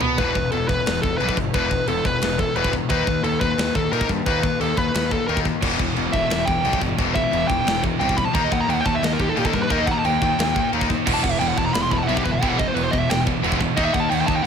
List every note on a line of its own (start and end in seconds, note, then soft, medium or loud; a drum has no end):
0.01 0.18 B2 loud
0.01 0.18 B3 medium
0.01 floor tom medium
0.18 0.29 E1 medium
0.18 0.34 E2 medium
0.18 0.35 B2 medium
0.18 0.35 E3 medium
0.18 0.50 B4 medium
0.18 kick loud
0.18 china medium
0.35 0.46 E1 medium
0.35 0.51 E2 medium
0.35 0.51 B2 medium
0.35 kick medium
0.52 0.64 E1 medium
0.52 0.68 E2 medium
0.52 0.68 B2 medium
0.52 0.68 A4 medium
0.52 china medium
0.68 0.80 E1 medium
0.68 0.84 E2 medium
0.68 0.85 B2 medium
0.68 1.00 B4 medium
0.68 kick medium
0.86 0.98 E1 medium
0.86 1.02 E2 medium
0.86 1.02 B2 medium
0.86 snare loud
0.86 china medium
1.02 1.14 E1 medium
1.02 1.19 E2 medium
1.02 1.19 B2 medium
1.02 1.17 A4 medium
1.02 kick medium
1.18 1.31 B1 medium
1.18 1.36 E2 medium
1.18 1.36 B2 medium
1.18 1.37 E3 loud
1.18 1.36 B4 medium
1.18 china medium
1.29 kick medium
1.37 1.48 G1 medium
1.37 1.52 E2 medium
1.37 1.53 B2 medium
1.37 kick medium
1.54 1.76 E1 medium
1.54 1.70 E2 medium
1.54 1.70 B2 medium
1.54 1.71 E3 medium
1.54 1.86 B4 medium
1.54 kick loud
1.54 china medium
1.71 1.87 E2 medium
1.71 1.87 B2 medium
1.71 kick medium
1.87 1.99 E1 medium
1.87 2.03 E2 medium
1.87 2.04 B2 medium
1.87 2.05 A4 medium
1.87 china medium
2.05 2.16 E1 medium
2.05 2.20 E2 medium
2.05 2.21 B2 medium
2.05 2.37 B4 medium
2.05 kick medium
2.22 2.44 E1 medium
2.22 2.37 E2 medium
2.22 2.37 B2 medium
2.22 snare loud
2.22 china medium
2.38 2.54 E2 medium
2.38 2.54 B2 medium
2.38 2.56 A4 medium
2.38 kick medium
2.55 2.77 E1 medium
2.55 2.72 E2 medium
2.55 2.72 B2 medium
2.55 2.73 E3 loud
2.55 2.73 B4 medium
2.55 china medium
2.64 kick medium
2.73 2.89 E2 medium
2.73 2.89 B2 medium
2.73 kick medium
2.89 3.01 D#2 loud
2.89 3.06 D#3 medium
2.89 3.06 A#3 medium
2.89 3.07 D#4 medium
2.89 3.22 B4 medium
2.89 kick loud
2.89 china medium
3.07 3.18 D#2 medium
3.07 3.22 D#3 medium
3.07 3.22 A#3 medium
3.07 kick medium
3.24 3.35 D#2 medium
3.24 3.39 D#3 medium
3.24 3.40 A#3 medium
3.24 3.40 A4 medium
3.24 china medium
3.41 3.52 D#2 medium
3.41 3.56 D#3 medium
3.41 3.57 A#3 medium
3.41 3.73 B4 loud
3.41 kick medium
3.58 3.69 D#2 medium
3.58 3.73 D#3 medium
3.58 3.74 A#3 medium
3.58 snare loud
3.58 china medium
3.75 3.86 D#2 medium
3.75 3.90 D#3 medium
3.75 3.91 A#3 medium
3.75 3.92 A4 medium
3.75 kick medium
3.92 4.03 A#2 medium
3.92 4.08 D#3 medium
3.92 4.09 A#3 loud
3.92 4.09 D#4 loud
3.92 4.09 A#4 medium
3.92 china medium
4.01 kick medium
4.09 4.20 G2 medium
4.09 4.25 D#3 medium
4.09 4.25 A#3 medium
4.09 kick medium
4.26 4.48 D#2 loud
4.26 4.42 D#3 medium
4.26 4.42 A#3 medium
4.26 4.43 D#4 medium
4.26 4.58 B4 loud
4.26 kick loud
4.26 china medium
4.43 4.58 D#3 medium
4.43 4.58 A#3 medium
4.43 kick medium
4.60 4.71 D#2 medium
4.60 4.75 D#3 medium
4.60 4.75 A#3 medium
4.60 4.77 A4 medium
4.60 china medium
4.76 4.88 D#2 medium
4.76 4.92 D#3 medium
4.76 4.92 A#3 medium
4.76 5.11 B4 medium
4.76 kick medium
4.94 5.17 D#2 medium
4.94 5.10 D#3 medium
4.94 5.10 A#3 medium
4.94 snare loud
4.94 china medium
5.11 5.27 D#3 medium
5.11 5.27 A#3 medium
5.11 5.27 A4 medium
5.11 kick medium
5.27 5.50 D#2 medium
5.27 5.45 D#3 medium
5.27 5.45 A#3 medium
5.27 5.45 D#4 medium
5.27 5.38 A#4 medium
5.27 china medium
5.37 kick medium
5.45 5.61 D#3 medium
5.45 5.61 A#3 medium
5.45 kick medium
5.62 5.74 E1 loud
5.62 5.79 E2 medium
5.62 5.79 B2 medium
5.62 5.79 E3 loud
5.62 kick loud
5.62 crash loud
5.62 china medium
5.79 5.90 E1 medium
5.79 5.95 E2 medium
5.79 5.95 B2 medium
5.79 kick medium
5.96 6.07 E1 medium
5.96 6.12 E2 medium
5.96 6.12 B2 medium
5.96 china medium
6.13 6.24 E1 medium
6.13 6.29 E2 medium
6.13 6.29 B2 medium
6.13 6.45 E5 medium
6.13 kick medium
6.30 6.41 E1 medium
6.30 6.46 E2 medium
6.30 6.46 B2 medium
6.30 snare loud
6.30 china medium
6.45 6.59 E1 medium
6.45 6.63 E2 medium
6.45 6.63 B2 medium
6.45 6.78 G5 loud
6.45 kick medium
6.64 6.75 B1 medium
6.64 6.81 E2 medium
6.64 6.81 B2 loud
6.64 6.81 E3 loud
6.64 china medium
6.73 kick medium
6.82 6.92 G1 medium
6.82 6.97 E2 medium
6.82 6.97 B2 medium
6.82 kick medium
6.98 7.20 E1 loud
6.98 7.14 E2 medium
6.98 7.14 B2 medium
6.98 7.15 E3 medium
6.98 kick loud
6.98 china medium
7.15 7.30 E2 medium
7.15 7.31 B2 medium
7.15 7.47 E5 medium
7.15 kick medium
7.31 7.43 E1 medium
7.31 7.47 E2 medium
7.31 7.48 B2 medium
7.31 china medium
7.48 7.60 E1 medium
7.48 7.64 E2 medium
7.48 7.64 B2 medium
7.48 7.80 G5 loud
7.48 kick medium
7.65 7.88 E1 medium
7.65 7.81 E2 medium
7.65 7.81 B2 medium
7.65 snare loud
7.65 china medium
7.82 7.98 E2 medium
7.82 7.98 B2 medium
7.82 kick medium
7.99 8.22 C2 medium
7.99 8.15 E2 medium
7.99 8.16 B2 loud
7.99 8.17 E3 loud
7.99 8.17 G5 medium
7.99 china medium
8.09 kick medium
8.16 8.32 E2 medium
8.16 8.33 B2 medium
8.16 8.25 B5 loud
8.16 kick medium
8.25 8.34 A5 medium
8.33 8.45 D#2 loud
8.33 8.50 D#3 medium
8.33 8.50 A#3 medium
8.33 8.51 D#4 loud
8.33 8.43 A#5 loud
8.33 kick loud
8.33 china medium
8.44 8.52 D#5 medium
8.52 8.63 D#2 medium
8.52 8.67 D#3 medium
8.52 8.67 A#3 medium
8.52 8.60 F#5 loud
8.52 kick medium
8.61 8.69 A#5 loud
8.68 8.79 D#2 loud
8.68 8.84 D#3 medium
8.68 8.84 A#3 medium
8.68 8.74 G5 loud
8.68 china medium
8.74 8.80 F#5 medium
8.80 8.85 G5 medium
8.85 8.97 D#2 medium
8.85 9.00 D#3 medium
8.85 9.01 A#3 medium
8.85 8.94 A5 loud
8.85 kick medium
8.95 9.03 E5 medium
9.03 9.13 D#2 medium
9.03 9.18 D#3 medium
9.03 9.18 A#3 medium
9.03 9.12 D#5 medium
9.03 snare loud
9.03 china medium
9.13 9.20 A#4 medium
9.19 9.31 D#2 medium
9.19 9.35 D#3 medium
9.19 9.35 A#3 medium
9.19 9.29 G4 medium
9.19 kick medium
9.29 9.37 A4 loud
9.36 9.48 A#2 medium
9.36 9.52 D#3 medium
9.36 9.52 A#3 loud
9.36 9.53 D#4 medium
9.36 9.46 G4 medium
9.36 china medium
9.45 9.54 A4 medium
9.45 kick medium
9.53 9.65 G2 medium
9.53 9.68 D#3 medium
9.53 9.69 A#3 medium
9.53 9.62 A#4 loud
9.53 kick medium
9.63 9.71 B4 medium
9.70 9.92 D#2 loud
9.70 9.86 D#3 medium
9.70 9.86 A#3 medium
9.70 9.87 D#4 medium
9.70 9.79 A#4 medium
9.70 kick loud
9.70 china medium
9.78 9.87 D#5 medium
9.86 10.03 D#3 medium
9.86 10.03 A#3 medium
9.86 9.92 F#5 loud
9.86 kick medium
9.91 9.98 A#5 loud
9.99 10.04 A5 medium
10.04 10.15 D#2 medium
10.04 10.20 D#3 medium
10.04 10.20 A#3 medium
10.04 10.68 G5 loud
10.04 china medium
10.22 10.32 D#2 medium
10.22 10.37 D#3 medium
10.22 10.37 A#3 medium
10.22 kick medium
10.38 10.60 D#2 medium
10.38 10.54 D#3 medium
10.38 10.54 A#3 medium
10.38 snare loud
10.38 china medium
10.55 10.71 D#3 medium
10.55 10.71 A#3 medium
10.55 kick medium
10.73 10.94 D#2 medium
10.73 10.88 D#3 loud
10.73 10.88 A#3 medium
10.73 10.89 D#4 medium
10.73 china medium
10.81 kick medium
10.89 11.04 D#3 medium
10.89 11.05 A#3 medium
10.89 kick medium
11.06 11.18 E1 medium
11.06 11.22 E2 medium
11.06 11.22 B2 medium
11.06 11.23 E3 medium
11.06 kick loud
11.06 china medium
11.06 crash loud
11.14 11.22 A5 medium
11.23 11.34 E1 medium
11.23 11.39 E2 medium
11.23 11.39 B2 medium
11.23 11.31 F#5 medium
11.23 kick medium
11.31 11.39 E5 loud
11.40 11.52 E1 medium
11.40 11.55 E2 medium
11.40 11.56 B2 medium
11.40 11.47 G5 loud
11.40 china medium
11.48 11.56 F#5 medium
11.57 11.68 E1 medium
11.57 11.72 E2 medium
11.57 11.73 B2 medium
11.57 11.65 A5 medium
11.57 kick medium
11.66 11.74 A#5 medium
11.74 11.86 E1 medium
11.74 11.89 E2 medium
11.74 11.89 B2 medium
11.74 11.81 B5 medium
11.74 snare loud
11.74 china medium
11.82 11.90 C6 loud
11.91 12.02 E1 medium
11.91 12.06 E2 medium
11.91 12.07 B2 medium
11.91 11.97 B5 medium
11.91 kick medium
11.96 12.03 A5 medium
12.03 12.08 F#5 loud
12.07 12.19 B1 medium
12.07 12.24 E2 medium
12.07 12.24 B2 medium
12.07 12.25 E3 loud
12.07 12.16 E5 medium
12.07 china medium
12.16 12.24 G4 medium
12.16 kick medium
12.24 12.36 G1 loud
12.24 12.40 E2 medium
12.24 12.40 B2 medium
12.24 12.32 B4 medium
12.24 kick medium
12.31 12.42 E5 medium
12.42 12.64 E1 loud
12.42 12.58 E2 medium
12.42 12.58 B2 medium
12.42 12.58 E3 loud
12.42 12.49 G5 loud
12.42 kick loud
12.42 china medium
12.50 12.58 F#5 medium
12.58 12.74 E2 medium
12.58 12.74 B2 medium
12.58 12.68 D#5 medium
12.58 kick medium
12.68 12.75 C5 medium
12.75 12.87 E1 medium
12.75 12.91 E2 medium
12.75 12.91 B2 medium
12.75 12.83 B4 loud
12.75 china medium
12.83 12.92 C5 medium
12.91 13.04 E1 medium
12.91 13.08 E2 medium
12.91 13.08 B2 medium
12.91 12.99 D#5 medium
12.91 kick medium
12.99 13.10 E5 medium
13.10 13.31 E1 medium
13.10 13.25 E2 medium
13.10 13.25 B2 medium
13.10 13.20 G5 medium
13.10 snare loud
13.10 china medium
13.26 13.41 E2 medium
13.26 13.42 B2 medium
13.26 kick medium
13.42 13.65 E1 medium
13.42 13.59 E2 medium
13.42 13.59 B2 medium
13.42 13.59 E3 loud
13.42 china medium
13.52 kick medium
13.60 13.75 E2 medium
13.60 13.75 B2 medium
13.60 kick medium
13.76 13.88 D#2 medium
13.76 13.92 D#3 medium
13.76 13.93 A#3 medium
13.76 13.93 D#4 loud
13.76 13.84 D#5 medium
13.76 kick loud
13.76 china medium
13.85 13.93 E5 medium
13.93 14.05 D#2 loud
13.93 14.09 D#3 medium
13.93 14.09 A#3 medium
13.93 14.00 F#5 medium
13.93 kick medium
14.00 14.09 A5 loud
14.10 14.22 D#2 medium
14.10 14.26 D#3 medium
14.10 14.26 A#3 medium
14.10 14.14 G5 loud
14.10 china medium
14.14 14.21 F#5 medium
14.21 14.27 G5 medium
14.27 14.39 D#2 medium
14.27 14.43 D#3 medium
14.27 14.43 A#3 medium
14.27 14.35 A5 loud
14.27 kick medium
14.36 14.43 G5 loud